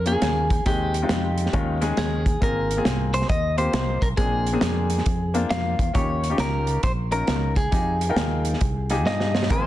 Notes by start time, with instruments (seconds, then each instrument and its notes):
Already playing: fingered electric bass F2
0.06 grand piano A#3 C#4 F4 G4, clean electric guitar G#4, closed hi-hat
0.12 grand piano G#4
0.22 fingered electric bass D#2, snare, closed hi-hat
0.50 kick, closed hi-hat
0.66 fingered electric bass D#2, grand piano D#3 G#3 C4 D#4 G#4, clean electric guitar G4, kick, closed hi-hat
0.94 closed hi-hat
1.02 grand piano G#3 C4 D#4 F4
1.09 fingered electric bass F2, snare, closed hi-hat
1.38 closed hi-hat
1.46 snare
1.53 fingered electric bass D#2, grand piano D#3 G#3 C#4 D#4 F4, kick, closed hi-hat
1.81 grand piano G#3 C#4 D#4 G#4, snare, closed hi-hat
1.97 fingered electric bass D#2, clean electric guitar G#4, snare, closed hi-hat
2.26 kick, closed hi-hat
2.41 fingered electric bass G#1, grand piano G#2 A#3 C4 F4 G#4, clean electric guitar A#4, kick, closed hi-hat
2.71 closed hi-hat
2.77 grand piano A#3 C4 F4 G#4
2.85 fingered electric bass C2, snare, closed hi-hat
3.14 clean electric guitar C5, closed hi-hat
3.22 snare
3.29 fingered electric bass D#2, clean electric guitar D#5, kick, closed hi-hat
3.57 grand piano A#3 C4 F4 G4, clean electric guitar C5, closed hi-hat
3.73 fingered electric bass C2, snare, closed hi-hat
4.02 fingered electric bass B1, clean electric guitar A#4, kick, closed hi-hat
4.17 fingered electric bass A#1, grand piano A#2 A#3 C4 D4 G#4, clean electric guitar G#4, kick, closed hi-hat
4.47 closed hi-hat
4.53 grand piano A#3 C4 D4 G#4
4.61 fingered electric bass F2, snare, closed hi-hat
4.90 closed hi-hat
4.98 snare
5.06 fingered electric bass F2, kick, closed hi-hat
5.34 grand piano A#3 C4 D4 F4, closed hi-hat
5.50 fingered electric bass F2, clean electric guitar F5, snare, closed hi-hat
5.79 fingered electric bass E2, kick, closed hi-hat
5.93 fingered electric bass D#2, grand piano D#3 C#4 D#4 F4 G4, clean electric guitar C#5, kick, closed hi-hat
6.24 closed hi-hat
6.30 grand piano C#4 D#4 F4 G4
6.38 fingered electric bass C#2, clean electric guitar A#4, snare, closed hi-hat
6.67 closed hi-hat
6.83 fingered electric bass A#1, clean electric guitar C5, kick, closed hi-hat
7.11 grand piano C#4 D#4 F4 A#4, clean electric guitar A#4, closed hi-hat
7.27 fingered electric bass C#2, snare, closed hi-hat
7.56 clean electric guitar G#4, kick, closed hi-hat
7.71 fingered electric bass F2, grand piano D#4 F4 G4 G#4, kick, closed hi-hat
8.01 closed hi-hat
8.09 grand piano D#4 F4 A#4 G5
8.16 fingered electric bass D#2, snare, closed hi-hat
8.45 closed hi-hat
8.53 snare
8.61 fingered electric bass C2, kick, closed hi-hat
8.90 grand piano D#4 F4 G4 G#4, snare, closed hi-hat
9.05 fingered electric bass G2, clean electric guitar D#5, snare
9.20 snare
9.35 snare
9.43 snare
9.50 fingered electric bass G#1, grand piano G#2 C4 F4 G#4 A#4, tonewheel organ F3 A#3 C4 G#4, clean electric guitar C5, kick, closed hi-hat